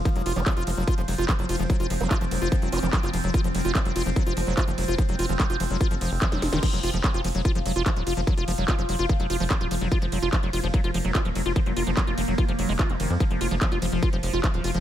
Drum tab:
CC |----------------|----------------|----------------|----------------|
RD |--x---x---x---x-|--x---x---x---x-|--x---x---x---x-|--x---x---x---x-|
HH |xxoxxxoxxxoxxxox|xxoxxxoxxxoxxxox|xxoxxxoxxxoxxxox|xxoxxxoxxxooxxox|
CP |----x-------x---|----x-------xx--|----x-------x---|----x-------x---|
SD |----------------|----------------|----------------|-------------ooo|
BD |o---o---o---o---|o---o---o---o---|o---o---o---o---|o---o---o---o---|

CC |x---------------|----------------|----------------|----------------|
RD |--x---x---x---x-|--x---x---x---x-|--x---x---x---x-|--x---x---x---x-|
HH |xxoxxxoxxxoxxxox|xxo-xxoxxxooxxox|xxoxxxoxxxoxxxox|xxoxxxoxxxooxxox|
CP |----x-------x---|----x-------x---|----x-------x---|----x-------x---|
SD |----------------|----------------|----------------|----------------|
BD |o---o---o---o---|o---o---o---o---|o---o---o---o---|o---o---o---o---|

CC |----------------|
RD |--x---x---x---x-|
HH |xxoxxxoxxxoxxxox|
CP |----x-------x---|
SD |----------------|
BD |o---o---o---o---|